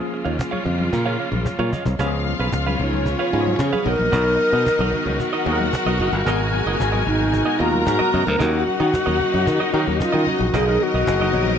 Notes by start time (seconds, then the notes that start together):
Already playing: C#3 F3 G#3 A#3 C#4 F4 G#4
0.00 muted clean electric guitar stroke
0.12 muted clean electric guitar stroke, cajon slap
0.25 D#2 F4 G#4 C#5 F5, cajon slap
0.39 muted clean electric guitar stroke, cajon bass, cajon slap, muted conga
0.51 F4 G#4 C#5 F5, high conga
0.65 F2, low conga
0.78 muted clean electric guitar stroke, cajon slap, high conga
0.92 A#2, muted clean electric guitar stroke, cajon bass, muted conga
1.06 F4 G#4 C#5 F5, muted conga
1.19 F4 G#4 C#5 F5, cajon slap
1.32 A#1, muted clean electric guitar stroke, cajon slap, high conga
1.45 C#5, muted clean electric guitar stroke, cajon bass, cajon slap
1.59 A#2 F4 G#4 C#5 F5, high conga
1.72 F4 G#4 C#5 D#5 F5, cajon bass, low conga
1.86 C2 C#5, muted clean electric guitar stroke, cajon bass, high conga
1.99 C#2 C#3 F3 G#3 B3 C#4 F4 G4 G#4 B4 F5, cajon bass
2.06 G#4
2.13 muted clean electric guitar stroke
2.26 muted clean electric guitar stroke, cajon slap, high conga
2.39 B1 C#4 G#4 B4 F5, cajon slap
2.52 C#2, muted clean electric guitar stroke, cajon bass, cajon slap
2.66 C#4 G#4 B4 F5, high conga
2.79 C#2 C#4 D#4 C#5, cajon slap, low conga
2.93 muted clean electric guitar stroke, high conga
3.06 F4, muted clean electric guitar stroke, cajon bass
3.19 C#4 G#4 B4 F5, muted conga
3.32 G#2 F3 B3 C#4 F#4 G#4 B4 F5, cajon slap
3.40 G#4
3.47 muted clean electric guitar stroke, high conga
3.59 C#3 G#4, muted clean electric guitar stroke, cajon bass, cajon slap, muted conga
3.73 C#4 G#4 B4 F5, high conga
3.85 B1 D#3 F#3 B3 D#4 F#4 A#4 D#5, cajon slap, low conga
3.89 A#4
3.99 A#1, cajon slap, high conga
4.12 B1 D#4 F#4 A#4 D#5, cajon bass
4.26 muted clean electric guitar stroke, muted conga
4.40 muted clean electric guitar stroke, cajon slap, high conga
4.53 B2 D#4 F#4 A#4 D#5
4.67 muted clean electric guitar stroke, cajon bass, cajon slap
4.79 B1 D#4 F#4 A#4 D#5, muted conga, high conga
4.93 muted clean electric guitar stroke, cajon slap, low conga
5.06 C#2, muted clean electric guitar stroke, cajon slap, high conga
5.20 F#4 F#5, muted clean electric guitar stroke, cajon bass
5.33 D#4 F#4 A#4 D#5
5.45 D#2 F#3 B3 D#4 F#4 G#4 A#4 D#5, cajon slap
5.53 A#4
5.60 muted clean electric guitar stroke, high conga
5.73 muted clean electric guitar stroke, cajon bass, cajon slap, muted conga
5.86 B1 D#4 F#4 A#4 D#5, muted conga, high conga
5.99 F#1 D#4 F#4 A#4 D#5, cajon slap, low conga
6.12 G1, cajon slap, high conga
6.25 G#1 B2 G#3 B3 F#4 G#4 A#4 D#5 G#5, cajon bass
6.39 muted clean electric guitar stroke, muted conga
6.53 muted clean electric guitar stroke, cajon slap, high conga
6.66 F#1 B3 F#4 A#4 D#5, cajon slap
6.79 G#1, muted clean electric guitar stroke, cajon bass, cajon slap, muted conga
6.92 B3 F#4 A#4 D#5, muted conga, high conga
7.06 G#1 D#4, muted clean electric guitar stroke, cajon slap, low conga
7.19 muted clean electric guitar stroke, high conga
7.33 muted clean electric guitar stroke, cajon bass
7.46 B3 F#4 A#4 D#5, muted conga
7.58 D#2 G#3 B3 F4 F#4 A#4 D#5 A#5, cajon slap
7.74 cajon slap, high conga
7.86 G#2 F#4, muted clean electric guitar stroke, cajon bass, cajon slap
7.99 B3 F#4 A#4 D#5, muted conga, high conga
8.12 F#2 B3 F#4 A#4 D#5, cajon slap, low conga
8.26 D2 A#4, muted clean electric guitar stroke, cajon slap, high conga
8.39 D#2 C#3 F#3 A#3 C#4 D#4 F#4 A#4 D#5 F#5, cajon bass
8.67 muted clean electric guitar stroke, cajon slap, high conga
8.80 D#3 C#4 F#4 A#4 D#5, cajon slap
8.92 muted clean electric guitar stroke, cajon bass, cajon slap, muted conga
9.06 D#2 C#4 F#4 A#4 D#5, high conga
9.20 low conga
9.32 F#2, muted clean electric guitar stroke, high conga
9.46 D#3, muted clean electric guitar stroke, cajon bass
9.60 C#4 F#4 A#4 D#5, muted conga
9.73 D#3 F#3 C#4 D#4 F#4 A#4 D#5, cajon slap
9.87 D#2, muted clean electric guitar stroke, cajon slap, high conga
10.00 D#4 F4 D#5, muted clean electric guitar stroke, cajon bass, cajon slap
10.12 D#3 C#4 F#4 A#4 D#5, high conga
10.27 C#4 F#4 A#4 D#5, cajon slap, low conga
10.39 A#1, muted clean electric guitar stroke, cajon slap, high conga
10.53 B1 D#3 F#3 B3 D#4 F#4 G#4 A#4 D#5, cajon bass, muted conga, low conga
10.66 F#3 B3 D#4 A#4, muted clean electric guitar stroke, muted conga
10.79 F#4, muted clean electric guitar stroke, cajon slap, high conga
10.94 B1 D#4 F#4 A#4 D#5, cajon slap
11.07 F#1, muted clean electric guitar stroke, cajon bass, cajon slap
11.21 D#4 F#4 A#4 D#5, muted conga, high conga
11.32 A#1 F#3 B3 D#4 C#5, muted clean electric guitar stroke, cajon slap, low conga
11.47 muted clean electric guitar stroke, cajon slap, high conga